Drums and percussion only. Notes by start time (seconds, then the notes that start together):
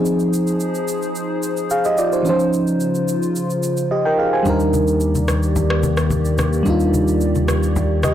0.05 shaker
0.20 shaker
0.33 shaker
0.47 shaker
0.60 shaker
0.75 shaker
0.88 shaker
1.02 shaker
1.15 shaker
1.43 shaker
1.57 shaker
1.70 shaker
1.85 shaker
1.98 shaker
2.12 shaker
2.25 shaker
2.40 shaker
2.53 shaker
2.67 shaker
2.80 shaker
2.95 shaker
3.08 shaker
3.23 shaker
3.36 shaker
3.50 shaker
3.63 shaker
3.77 shaker
4.46 low conga, shaker
4.60 shaker
4.74 high conga, shaker
4.88 shaker
5.00 shaker
5.15 high conga, shaker
5.28 cross-stick, high conga, shaker
5.43 shaker
5.56 low conga, shaker
5.70 cross-stick
5.83 high conga, shaker
5.97 cross-stick, shaker
6.10 high conga, low conga, shaker
6.25 shaker
6.38 cross-stick, high conga, shaker
6.53 shaker
6.66 low conga, shaker
6.80 shaker
6.94 high conga, shaker
7.08 shaker
7.21 shaker
7.35 high conga, shaker
7.48 cross-stick, high conga, shaker
7.63 shaker
7.76 low conga, shaker
8.03 cross-stick, high conga, shaker